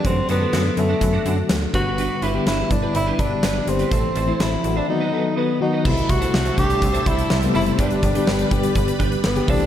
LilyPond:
<<
  \new Staff \with { instrumentName = "String machine" } { \time 4/4 \key g \major \tempo 4 = 124 << { r1 | r1 | r1 | <c'' e'' a''>1 |
<b' d'' b''>2.~ <b' d'' b''>8 <c'' e'' a''>8 | } \\ { r1 | r1 | r1 | g1~ |
g1 | } >> }
  \new Staff \with { instrumentName = "Clean electric guitar" } { \time 4/4 \key g \major <d' fis' a'>16 r16 <d' fis' a'>16 <d' fis' a'>16 <d' fis' a'>16 r8 <d' fis' a'>16 r16 <d' fis' a'>16 <d' fis' a'>16 r8. <d' g' b'>16 <d' g' b'>16 | <d' g' b'>16 r16 <d' g' b'>16 <d' g' b'>16 <d' g' b'>16 r8 <d' g' b'>16 r16 <d' g' b'>16 <d' g' b'>16 r16 <d' g' b'>16 r8 <d' g' b'>16 | <e' a' c''>16 r16 <e' a' c''>16 <e' a' c''>16 <e' a' c''>16 r8 <e' a' c''>16 r16 <dis' fis' b'>16 <dis' fis' b'>16 r16 <dis' fis' b'>16 r8 <dis' fis' b'>16 | <e' a' c''>16 r8 <e' a' c''>16 r4 r16 <e' a' c''>16 <e' a' c''>16 r8. <e' a' c''>16 r16 |
<d' g' b'>16 r8 <d' g' b'>16 r4. <d' g' b'>16 r8. <e' a' c''>16 r16 | }
  \new Staff \with { instrumentName = "Tenor saxophone" } { \time 4/4 \key g \major c'8 b4 a4. r8 fis'8~ | fis'8 e'8 e'8 d'8 e'8 d'4 c'8~ | c'4 e'8. d'16 dis'4 b8 dis'8 | e'8 fis'4 g'4 e'4 e'8 |
d'4. r4. b8 d'8 | }
  \new Staff \with { instrumentName = "FM electric piano" } { \time 4/4 \key g \major <d fis a fis'>8. <d fis a a'>8. <d fis a b>8. r16 <d fis a fis'>8. r16 <d g b b'>8~ | <d g b b'>8 r16 <d g b g'>8. <d g b e'>8. r16 <d g b g'>8. r16 <d g b g'>8 | <e a c' a'>8. <e a c' e'>8. <e a c' fis'>8 <dis fis b fis'>8 <dis fis b a'>8. r16 <dis fis b fis'>8 | <c g a e'>8. <c g a e'>8. <c g a d'>4. r16 <c g a b>16 <c g a e'>8 |
<d g b g'>8. <d g b g'>8. <d g b g'>4. r16 <d g b g'>16 <e a c' g'>8 | }
  \new Staff \with { instrumentName = "FM bass" } { \clef bass \time 4/4 \key g \major fis,8 fis,8 fis,8 fis,8 fis,8 fis,8 d,8 g,,8~ | g,,8 g,,8 g,,8 g,,8 g,,8 g,,8 g,,8 g,,8 | a,,8 a,,8 a,,8 a,,8 r2 | c,8 c,8 c,8 c,8 c,8 c,8 c,8 fis,,8 |
g,,8 g,,8 g,,8 g,,8 g,,8 g,,8 g,,8 c,8 | }
  \new DrumStaff \with { instrumentName = "Drums" } \drummode { \time 4/4 <hh bd>8 hh8 <hh sn>8 hh8 <hh bd>8 hh8 <hh sn>8 <hh bd>8 | hh8 hh8 <hh sn>8 <hh bd>8 hh8 <hh bd>8 <hh sn>8 hh16 hh16 | <hh bd>8 hh8 <hh sn>8 hh8 r4 r4 | <cymc bd>16 hh16 <hh bd>16 hh16 sn16 hh16 <hh bd>16 hh16 <hh bd>16 hh16 <hh bd>16 hh16 sn16 hh16 hho16 hh16 |
<hh bd>16 hh16 <hh bd>16 hh16 sn16 hh16 <hh bd>16 hh16 <hh bd>16 hh16 <hh bd>16 hh16 sn16 hh16 <hho bd>16 hh16 | }
>>